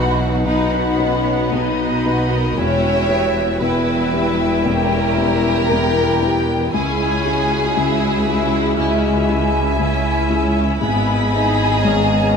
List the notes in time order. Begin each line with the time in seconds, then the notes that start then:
Already playing: B1 B2 E3 B3 D#4 F#4 B4 F#5 B5
0.45 B1 B2 B3 D#4 F#4 F#5 B5
0.72 B3
0.98 B3 C#4 D#4 B4
1.52 B1 B2 D#4 F#4 D#5 B5
2.05 B3 D#4 F#4 B4
2.30 A#4
2.56 E1 E2 G3 C#4 E4 C#5 E5 G5
3.08 B3 E4 G4
3.60 E1 E2 E4 B4 E5 G5
4.12 B3 E4 G4
4.65 E1 E2 C#4 G4 A#4
5.17 B3 E4 G4
5.69 E1 E2 B3 G5
6.22 B3 E4 G4 G5
6.72 C#2 C#3 G#3 C#4 E4 G#4 G#5
7.25 C#4 E4 F#4 G#4
7.75 C#2 C#3 E4 E5
8.26 C#4 E4 G#4
8.77 C#2 C#3 C#4 E4 E5 G#5
9.29 C#4 E4 G#4
9.79 C#2 C#3 C#4 E4
10.29 C#4 E4 G#4
10.80 G#1 G#2 B3 G#4 D#5 G#5 B5
11.32 B3 D#4 G#4
11.83 G#1 G#2 C#4 A#5